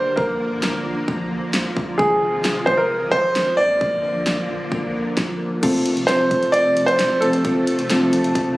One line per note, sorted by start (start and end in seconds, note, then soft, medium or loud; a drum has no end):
0.00 1.96 D3 medium
0.00 0.14 G3 medium
0.00 1.96 A#3 medium
0.00 0.18 C5 medium
0.16 0.26 A#1 loud
0.16 3.55 F3 medium
0.16 1.04 A#4 medium
0.16 kick loud
0.29 0.37 A#1 medium
0.51 0.60 A#1 medium
0.63 0.71 A#1 loud
0.63 snare loud
0.86 0.94 A#1 medium
1.08 kick medium
1.20 1.28 A#1 medium
1.31 1.39 A#1 loud
1.54 1.62 A#1 loud
1.54 snare loud
1.77 1.85 A#1 loud
1.77 kick medium
1.98 2.08 G#1 loud
1.98 3.57 C3 medium
1.98 3.57 G#3 medium
1.98 2.69 G#4 medium
1.98 kick loud
2.10 2.19 G#1 loud
2.33 2.42 G#1 loud
2.45 2.53 G#1 loud
2.45 snare loud
2.66 2.76 G#1 medium
2.66 2.78 C5 medium
2.66 kick medium
2.77 3.13 A#4 medium
3.01 3.10 G#1 loud
3.12 3.21 G#1 loud
3.12 3.54 C5 loud
3.12 kick medium
3.35 3.44 G#1 medium
3.35 snare loud
3.57 3.83 A#1 loud
3.57 5.61 D3 medium
3.57 5.61 F3 medium
3.57 5.61 A#3 medium
3.57 5.13 D5 loud
3.81 kick loud
3.92 4.01 A#1 loud
4.15 4.23 A#1 loud
4.26 4.35 A#1 loud
4.26 snare loud
4.49 4.57 A#1 loud
4.72 kick medium
4.83 4.92 A#1 loud
4.95 5.03 A#1 medium
5.17 kick loud
5.17 snare medium
5.63 5.71 F1 loud
5.63 8.57 C3 medium
5.63 8.57 F3 medium
5.63 5.99 A3 medium
5.63 8.57 A3 medium
5.63 5.99 C4 medium
5.63 5.99 F4 medium
5.63 5.99 A4 loud
5.63 kick loud
5.63 closed hi-hat medium
5.63 crash loud
5.74 5.82 F1 loud
5.86 closed hi-hat medium
5.97 6.05 F1 medium
5.97 closed hi-hat medium
6.07 6.17 F1 loud
6.07 6.80 A3 medium
6.07 6.80 C4 medium
6.07 6.80 F4 medium
6.07 6.80 A4 medium
6.07 6.54 C5 loud
6.07 snare loud
6.07 closed hi-hat medium
6.31 6.39 F1 loud
6.31 kick medium
6.31 closed hi-hat medium
6.43 closed hi-hat soft
6.52 6.88 D5 loud
6.52 closed hi-hat medium
6.65 6.73 F1 medium
6.76 6.85 F1 loud
6.76 closed hi-hat medium
6.86 7.22 C5 loud
6.86 closed hi-hat soft
6.99 7.07 F1 loud
6.99 snare loud
6.99 closed hi-hat medium
7.20 7.30 F1 loud
7.20 7.40 A3 medium
7.20 7.40 C4 medium
7.20 7.40 F4 medium
7.20 8.08 A4 medium
7.20 7.40 A4 medium
7.20 closed hi-hat medium
7.33 closed hi-hat medium
7.45 7.53 F1 loud
7.45 7.80 A3 medium
7.45 7.80 C4 medium
7.45 7.80 F4 medium
7.45 7.80 A4 medium
7.45 kick loud
7.45 closed hi-hat medium
7.56 7.64 F1 loud
7.67 closed hi-hat medium
7.79 7.87 F1 loud
7.79 closed hi-hat medium
7.90 7.98 F1 loud
7.90 8.57 A3 medium
7.90 8.57 C4 medium
7.90 8.57 F4 medium
7.90 8.57 A4 loud
7.90 snare loud
7.90 closed hi-hat medium
8.13 8.21 F1 medium
8.13 8.34 A5 medium
8.13 closed hi-hat medium
8.24 closed hi-hat soft
8.35 8.57 A5 medium
8.35 kick medium
8.35 closed hi-hat medium
8.47 8.55 F1 medium